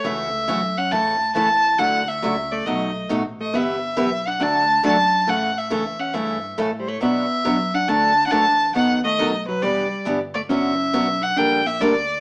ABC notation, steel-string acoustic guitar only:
X:1
M:4/4
L:1/8
Q:"Swing" 1/4=138
K:D
V:1 name="Steel-string acoustic guitar"
[C,E,A,CF] z [C,E,A,CF] z [C,E,A,CA] z [C,E,A,CA] z | [D,F,A,EF] z [D,F,A,EF] z [B,,F,A,^DF] z [B,,F,A,DF] z | [E,B,EGB] z [E,B,EGB] z [D,F,A,DF] z [D,F,A,DF] z | [C,E,A,CA] z [C,E,A,CA] z [C,E,A,CA] z [C,E,A,CA] z |
[B,,F,B,DF] z [B,,F,B,DF] z [D,F,A,DF] z [D,F,A,DF] z | [^D,F,B,^DA] z [D,F,B,DA] z [E,B,=DG] z [E,B,DG] z | [D,F,B,CF] z [D,F,B,CF] z [D,G,_B,DA] z [D,G,B,DA] z |]